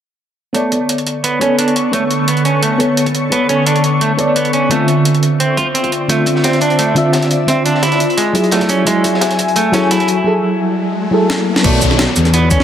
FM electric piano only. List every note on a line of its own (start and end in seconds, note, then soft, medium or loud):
0.53 1.38 B3 medium
0.53 1.39 A4 medium
0.53 1.40 C#5 medium
0.53 1.40 D5 medium
1.40 1.91 B3 medium
1.40 1.91 A4 medium
1.40 1.92 C#5 medium
1.92 2.77 B3 medium
1.92 2.78 A4 medium
1.92 2.78 C#5 medium
2.78 3.29 B3 medium
2.78 3.30 A4 medium
2.78 3.30 C#5 medium
3.30 4.16 B3 medium
3.30 4.16 A4 medium
3.30 4.17 C#5 medium
4.17 4.68 B3 medium
4.17 4.69 A4 medium
4.17 4.69 C#5 medium
4.17 4.70 D5 medium
4.69 5.55 D3 medium
4.69 5.55 C4 medium
4.69 5.56 F4 medium
4.69 5.56 E5 medium
6.08 6.93 D3 medium
6.08 6.94 C4 medium
6.08 6.95 F4 medium
6.08 6.95 E5 medium
6.95 7.45 D3 medium
6.95 7.46 C4 medium
6.95 7.47 F4 medium
6.95 7.47 E5 medium
7.47 7.98 D3 medium
7.47 7.99 C4 medium
7.47 8.00 F4 medium
7.47 8.00 E5 medium
8.33 8.84 F#3 medium
8.33 8.85 E4 medium
8.33 8.85 G#4 medium
8.85 9.71 F#3 medium
8.85 9.71 E4 medium
8.85 9.72 G#4 medium
9.72 10.23 F#3 medium
9.72 10.23 E4 medium
9.72 10.24 G#4 medium
9.72 10.25 A4 medium
10.24 11.10 F#3 medium
10.24 11.10 E4 medium
10.24 11.11 G#4 medium
10.24 11.11 A4 medium
11.11 11.62 F#3 medium
11.11 11.62 E4 medium
11.11 11.63 G#4 medium
11.11 11.63 A4 medium
11.63 12.48 B3 medium
11.63 12.49 A4 medium
11.63 12.49 C#5 medium
11.63 12.50 D5 medium